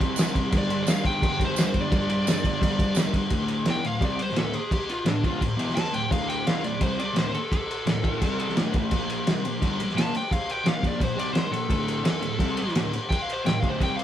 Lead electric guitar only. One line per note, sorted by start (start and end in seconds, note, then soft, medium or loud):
0.58 0.82 D5 loud
0.84 0.89 D5 loud
0.90 1.05 F5 loud
1.06 1.41 G5 loud
1.45 1.78 C5 loud
1.81 2.96 D5 medium
3.70 3.85 G5 loud
3.86 4.05 F5 medium
4.05 4.20 D5 medium
4.22 4.38 C5 medium
4.39 4.55 A4 medium
4.55 4.73 G#4 medium
4.73 4.89 G4 loud
4.90 5.06 F4 medium
5.09 5.24 D4 medium
5.24 5.41 F4 medium
5.75 5.93 A5 loud
5.93 6.11 G5 medium
6.12 6.29 F5 loud
6.29 6.47 G5 medium
6.47 6.64 F5 medium
6.64 6.81 D5 medium
6.83 6.99 C5 medium
6.99 7.18 D5 medium
7.18 7.34 C5 medium
7.34 7.51 A4 medium
7.53 8.54 A4 loud
9.97 10.14 A5 loud
10.17 10.32 G5 medium
10.32 10.51 F5 loud
10.51 10.67 G5 medium
10.67 10.84 F5 medium
10.87 11.04 D5 loud
11.04 11.19 C5 loud
11.19 11.33 D5 medium
11.33 11.51 C5 loud
11.52 11.69 A4 medium
11.70 12.72 A4 loud
13.09 13.22 G5 loud
13.22 13.33 F5 medium
13.33 13.44 C5 medium
13.46 13.60 G5 loud
13.60 13.70 F5 medium
13.70 13.80 C5 loud
13.83 13.96 G5 medium
13.96 14.04 F5 loud